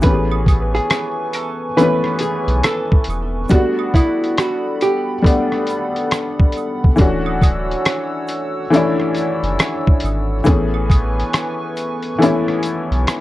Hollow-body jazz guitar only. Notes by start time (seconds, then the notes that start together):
0.04 B4
0.74 G#4
1.34 A4
1.77 B4
2.21 G#4
2.64 A4
3.51 F#4
3.95 E4
4.38 F#4
4.82 G4